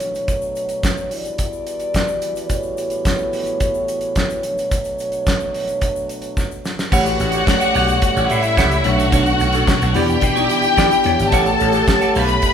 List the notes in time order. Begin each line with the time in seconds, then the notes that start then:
Already playing: C#5
0.00 B2 F#3 A3 D4, closed hi-hat, shaker
0.15 closed hi-hat, shaker
0.28 kick, closed hi-hat, shaker
0.42 shaker
0.56 closed hi-hat, shaker
0.69 closed hi-hat, shaker
0.83 kick, snare, closed hi-hat, shaker
0.97 shaker
1.11 E2 E3 G3 F#4 D5, open hi-hat, shaker
1.25 closed hi-hat, shaker
1.38 kick, closed hi-hat, shaker
1.53 shaker
1.67 closed hi-hat, shaker
1.80 closed hi-hat, shaker
1.94 kick, snare, closed hi-hat, shaker
2.08 shaker
2.22 closed hi-hat, shaker
2.36 closed hi-hat, shaker
2.49 A2 B3 C#5, kick, closed hi-hat, shaker
2.63 shaker
2.77 closed hi-hat, shaker
2.90 closed hi-hat, shaker
3.05 kick, snare, closed hi-hat, shaker
3.18 shaker
3.33 open hi-hat, shaker
3.46 closed hi-hat, shaker
3.60 kick, closed hi-hat, shaker
3.74 shaker
3.88 closed hi-hat, shaker
4.01 closed hi-hat, shaker
4.16 kick, snare, closed hi-hat, shaker
4.30 closed hi-hat, shaker
4.43 B2 F#3 A3 D4 C#5, closed hi-hat, shaker
4.58 closed hi-hat, shaker
4.71 kick, closed hi-hat, shaker
4.84 closed hi-hat, shaker
4.99 closed hi-hat, shaker
5.12 closed hi-hat, shaker
5.26 kick, snare, closed hi-hat, shaker
5.40 shaker
5.54 open hi-hat, shaker
5.68 closed hi-hat, shaker
5.81 kick, closed hi-hat, shaker
5.96 shaker
6.09 closed hi-hat, shaker
6.22 closed hi-hat, shaker
6.37 kick, snare, shaker
6.51 shaker
6.65 snare, shaker
6.79 snare, shaker
6.91 A1 G3 A3 C#4 F#4 G4 B4 C#5 F#5, kick, crash, shaker
7.06 muted clean electric guitar stroke, closed hi-hat, shaker
7.20 A1, muted clean electric guitar stroke, closed hi-hat, shaker
7.32 G4 C#5 F#5, closed hi-hat, shaker
7.47 muted clean electric guitar stroke, kick, snare, shaker
7.60 G4 C#5 F#5, closed hi-hat, shaker
7.74 B1 G4 C#5 F#5, open hi-hat, shaker
7.88 muted clean electric guitar stroke, closed hi-hat, shaker
8.02 muted clean electric guitar stroke, kick, closed hi-hat, shaker
8.15 A1 G4 C#5 F#5, closed hi-hat, shaker
8.29 A2 E4 G4 C#5 E5 F#5, closed hi-hat, shaker
8.43 muted clean electric guitar stroke, closed hi-hat, shaker
8.57 C#2 G4 C#5 F#5, kick, snare, shaker
8.70 muted clean electric guitar stroke, closed hi-hat, shaker
8.84 B1 B2 A3 B3 D4 F#4 C#5 F#5, muted clean electric guitar stroke, closed hi-hat
8.97 D4 A4 C#5, closed hi-hat, shaker
9.12 B1 D4 A4 C#5, kick, closed hi-hat, shaker
9.26 muted clean electric guitar stroke, closed hi-hat, shaker
9.40 B1, muted clean electric guitar stroke, closed hi-hat, shaker
9.52 D4 A4 C#5, snare, closed hi-hat, shaker
9.67 muted clean electric guitar stroke, kick, snare, shaker
9.82 B1 D4 A4 C#5, closed hi-hat, shaker
9.94 E2 E3 B3 E4 G4 D5 G5, open hi-hat, shaker
10.08 muted clean electric guitar stroke, closed hi-hat, shaker
10.21 B2, muted clean electric guitar stroke, kick, closed hi-hat, shaker
10.36 E4 G4 D5, closed hi-hat, shaker
10.49 E4 G4 D5, closed hi-hat, shaker
10.62 muted clean electric guitar stroke, closed hi-hat, shaker
10.77 E3 E4 G4 D5, kick, snare, shaker
10.91 muted clean electric guitar stroke, closed hi-hat, shaker
11.04 E2 E3 B3 G4 C#5, muted clean electric guitar stroke, closed hi-hat
11.19 G#1 E4 G4 D5, closed hi-hat, shaker
11.32 A1 A3 C#4 G4 A4 B4 C#5 F#5 A5, kick, closed hi-hat, shaker
11.46 muted clean electric guitar stroke, closed hi-hat, shaker
11.60 A1, muted clean electric guitar stroke, closed hi-hat, shaker
11.72 G4 C#5 F#5, snare, closed hi-hat, shaker
11.88 muted clean electric guitar stroke, kick, snare, shaker
12.01 G4 C#5 F#5, closed hi-hat, shaker
12.15 B1 G4 B4 C#5 F#5 B5, open hi-hat, shaker
12.29 muted clean electric guitar stroke, closed hi-hat, shaker
12.42 muted clean electric guitar stroke, kick, closed hi-hat, shaker